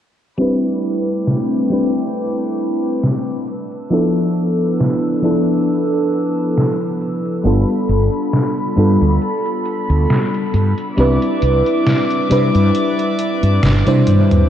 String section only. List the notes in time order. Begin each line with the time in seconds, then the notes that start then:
0.39 A3 C4 G5 B5 D6
3.48 D4 B4 E6
7.45 A4 B5
10.98 D5 E5 D6